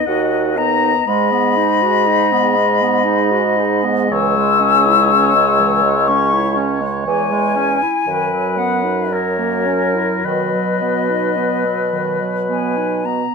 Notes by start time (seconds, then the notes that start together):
Already playing: D#5
0.06 D#2 D#4 F#4 F#5
0.56 B3 D#4 D#5 A#5
1.06 G#2 G#3 D#5 B5
1.31 B3
1.57 D#4
1.82 F#4
2.07 D#4
2.32 B3
2.56 G#3
2.81 B3
3.04 D#4
3.31 F#4
3.57 D#4
3.83 B3
4.10 C#2 E3 C#5 E6
4.36 G#3
4.60 C#4
4.86 E4
5.11 C#4
5.35 G#3
5.60 E3
5.83 G#3
6.08 C#4 C#6
6.33 E4
6.56 C#4
6.81 G#3
7.05 E2 E3 G#3 G#5
7.31 G#3
7.56 C#4
7.82 E4
8.07 F#2 D#3 F#3 B4
8.32 F#3
8.57 B3 F#5
8.84 D#4
9.12 F#3 A#4 C#5
9.39 A#3
9.66 C#4
9.95 E4
10.24 B2 D#3 B4 D#5
10.54 F#3
10.82 B3
11.10 D#4
11.37 B3
11.65 F#3
11.93 D#3
12.21 F#3
12.49 B3 G#5
12.77 D#4
13.05 B3 A#5